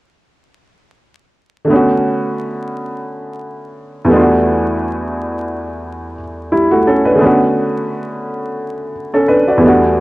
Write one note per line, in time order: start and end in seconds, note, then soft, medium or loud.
1.65 4.04 D3 medium
1.65 4.06 A3 medium
1.70 4.07 B3 medium
1.70 4.08 C#4 medium
1.76 4.10 F#4 medium
4.05 6.79 E2 medium
4.05 6.11 G3 medium
4.09 6.13 A3 medium
4.09 6.14 B3 medium
4.14 6.15 D4 medium
4.14 4.21 F4 medium
4.22 6.19 F#4 medium
6.52 6.71 G3 soft
6.52 6.70 E4 medium
6.71 6.86 A3 medium
6.71 6.85 F#4 medium
6.87 7.05 C#4 medium
6.87 7.05 A4 medium
7.05 7.39 D4 soft
7.05 7.38 B4 medium
7.15 7.25 C#3 medium
7.15 9.57 A3 medium
7.20 9.59 D3 medium
7.20 9.58 B3 medium
7.20 8.91 C#4 medium
7.26 8.92 F#4 medium
9.14 9.28 C#4 medium
9.14 9.27 A4 medium
9.28 9.47 D4 medium
9.28 9.47 B4 medium
9.48 9.67 F#4 soft
9.48 9.80 D5 medium
9.57 10.00 E2 medium
9.57 10.00 G3 medium
9.62 10.00 A3 medium
9.62 10.00 B3 medium
9.62 10.00 D4 medium
9.68 10.00 F#4 medium